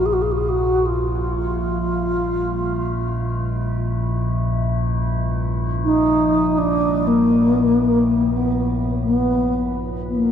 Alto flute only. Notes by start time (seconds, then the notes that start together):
0.06 G#4
0.13 F#4
0.22 G#4
0.32 F#4
0.37 G#4
0.49 F#4
0.86 F4
5.84 D#4
6.57 D4
7.07 A#3
8.33 B3
9.03 B3
10.09 B3
10.15 A#3